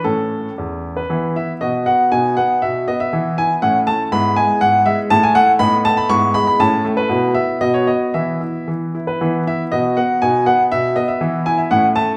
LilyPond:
<<
  \new Staff \with { instrumentName = "Grand piano" } { \time 2/4 \key a \major \tempo 4 = 120 << { a'4. r16 b'16~ | \key e \major b'8 e''8 dis''8 fis''8 | gis''8 fis''8 e''8 dis''16 e''16~ | e''8 gis''8 fis''8 a''8 |
b''8 gis''8 fis''8 e''16 r16 | a''16 gis''16 fis''8 b''8 a''16 b''16 | cis'''8 b''16 b''16 a''8. b'16~ | b'8 e''8 dis''16 cis''16 dis''8 |
e''4 r8. b'16~ | b'8 e''8 dis''8 fis''8 | gis''8 fis''8 e''8 dis''16 e''16~ | e''8 gis''16 e''16 fis''8 a''8 | } \\ { cis'2 | <b e'>4 <b fis'>4 | <b dis'>2 | <b e'>4 <cis' e'>4 |
<b e'>2 | <a e'>4 <b dis'>4 | <b e'>4 <cis' e'>4 | <b e'>4 <b fis'>4 |
<b e'>2 | <b e'>4 <b fis'>4 | <b dis'>2 | <b e'>4 <cis' e'>4 | } >> }
  \new Staff \with { instrumentName = "Grand piano" } { \clef bass \time 2/4 \key a \major a,4 e,4 | \key e \major e8 e'8 b,8 b8 | b,8 b8 b,8 b8 | e8 e'8 a,8 a8 |
gis,8 gis8 gis,8 gis8 | a,8 a8 a,8 a8 | gis,8 gis8 a,8 a8 | b,8 b8 b,8 b8 |
e8 e'8 e8 e'8 | e8 e'8 b,8 b8 | b,8 b8 b,8 b8 | e8 e'8 a,8 a8 | }
>>